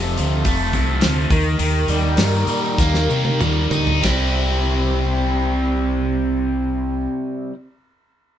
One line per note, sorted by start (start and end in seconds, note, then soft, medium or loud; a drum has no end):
0.00 0.16 F1 medium
0.00 0.74 F2 medium
0.00 0.72 C3 medium
0.00 0.16 F3 medium
0.00 1.28 A3 medium
0.00 1.28 C4 medium
0.00 1.28 F4 medium
0.00 1.28 A4 medium
0.17 0.44 D2 medium
0.17 0.99 F3 medium
0.17 open hi-hat soft
0.17 maracas medium
0.45 0.71 F1 medium
0.45 1.30 A3 medium
0.45 kick loud
0.45 open hi-hat medium
0.45 maracas medium
0.73 1.00 C2 medium
0.73 1.30 C3 medium
0.73 kick medium
0.73 open hi-hat soft
0.73 maracas medium
1.00 1.29 F3 medium
1.00 snare loud
1.00 open hi-hat medium
1.00 maracas medium
1.05 1.30 D2 medium
1.30 1.58 D#2 medium
1.30 1.57 D#3 medium
1.30 4.02 A#3 medium
1.30 4.02 D#4 medium
1.30 4.01 G4 medium
1.30 4.02 A#4 medium
1.30 kick loud
1.30 open hi-hat medium
1.30 maracas medium
1.59 1.87 D#2 medium
1.59 2.16 D#3 medium
1.59 open hi-hat medium
1.59 maracas medium
1.88 2.16 D#2 medium
1.88 2.47 G3 medium
1.88 open hi-hat soft
1.88 maracas medium
2.17 2.46 G2 medium
2.17 3.08 D#3 medium
2.17 snare loud
2.17 open hi-hat medium
2.17 maracas medium
2.47 2.76 A#2 medium
2.47 3.38 G3 medium
2.47 open hi-hat soft
2.47 maracas medium
2.78 3.07 D#2 medium
2.78 4.04 A#3 medium
2.78 kick loud
2.78 snare medium
2.78 maracas medium
2.94 snare soft
3.09 3.38 C3 medium
3.09 4.01 D#3 medium
3.09 maracas medium
3.25 high tom medium
3.40 3.70 D#2 medium
3.40 4.02 G3 medium
3.40 mid tom medium
3.40 maracas medium
3.71 4.02 D2 medium
3.71 4.04 D#4 medium
3.71 floor tom medium
3.71 maracas medium
3.87 floor tom medium
4.02 7.06 C2 medium
4.02 7.52 C3 medium
4.02 7.53 G3 medium
4.02 7.05 C4 medium
4.02 7.55 C4 loud
4.02 7.05 E4 medium
4.02 7.05 G4 medium
4.02 7.06 C5 medium
4.02 kick medium
4.02 snare medium
4.02 ride bell medium
4.02 maracas medium
4.06 7.56 E4 medium